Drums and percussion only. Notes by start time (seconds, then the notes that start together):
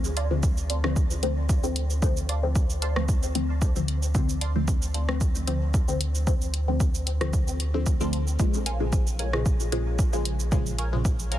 0.04 cabasa
0.17 closed hi-hat
0.43 kick, cabasa
0.57 cabasa
0.70 closed hi-hat
0.84 cross-stick
0.96 kick, cabasa
1.11 cabasa
1.23 closed hi-hat
1.49 kick, cabasa
1.64 cabasa
1.76 closed hi-hat
1.90 cabasa
2.02 kick, cabasa
2.17 cabasa
2.29 closed hi-hat
2.56 kick, cabasa
2.70 cabasa
2.82 closed hi-hat
2.96 cross-stick
3.09 kick, cabasa
3.23 cabasa
3.35 closed hi-hat
3.62 kick, cabasa
3.76 cabasa
3.88 closed hi-hat
4.03 cabasa
4.15 kick, cabasa
4.29 cabasa
4.41 closed hi-hat
4.68 kick, cabasa
4.82 cabasa
4.94 closed hi-hat
5.09 cross-stick
5.21 kick, cabasa
5.35 cabasa
5.47 closed hi-hat
5.74 kick, cabasa
5.88 cabasa
6.01 closed hi-hat
6.15 cabasa
6.27 kick, cabasa
6.41 cabasa
6.54 closed hi-hat
6.80 kick, cabasa
6.95 cabasa
7.07 closed hi-hat
7.21 cross-stick, closed hi-hat
7.33 kick, cabasa
7.48 cabasa
7.60 closed hi-hat
7.86 kick, cabasa
8.01 cabasa
8.13 closed hi-hat
8.27 cabasa
8.40 kick, cabasa
8.54 cabasa
8.66 closed hi-hat
8.93 kick, cabasa
9.07 cabasa
9.19 closed hi-hat
9.33 cross-stick
9.46 kick, cabasa
9.60 cabasa
9.72 closed hi-hat
9.99 kick, cabasa
10.13 cabasa
10.25 closed hi-hat
10.40 cabasa
10.52 kick, cabasa
10.66 cabasa
10.79 closed hi-hat
11.05 kick, cabasa
11.19 cabasa
11.32 closed hi-hat